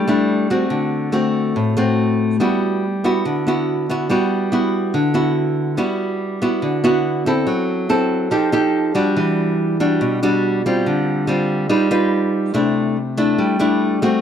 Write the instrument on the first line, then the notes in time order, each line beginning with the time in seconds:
nylon-string guitar
Already playing: G3
0.08 A3 D4 E4
0.50 A3 C4 F#4
0.70 D3
1.12 A3 C4 F#4
1.56 A2
1.77 A3 C4 F#4
2.40 G3 B3 E4 F#4
3.04 B3 E4 F#4
3.25 D3
3.47 B3 E4 F#4
3.89 B3 E4 F#4
4.09 G3 B3 E4 F#4
4.52 B3 E4 F#4
4.94 D3
5.14 B3 E4 F#4
5.77 G3 B3 E4 F#4
6.42 B3 E4 F#4
6.62 D3
6.84 B3 E4 F#4
7.26 C4 E4 A4
7.47 F#3
7.89 C4 E4 A4
8.31 F3 D#4 G4 A4
8.52 D#4 G4 A4
8.95 G3 D4 F#4
9.17 E3
9.80 G3 D4 F#4
10.01 B2
10.23 G3 D4 F#4
10.66 G3 C4 F4
10.86 D3
11.27 G3 C4 F4
11.69 G3 D#4 F4 B4
11.91 D#4 F4 B4
12.54 C3 A3 D4 E4
13.17 A3 D4 E4
13.38 G3
13.59 A3 D4 E4
14.02 A3 C4 F#4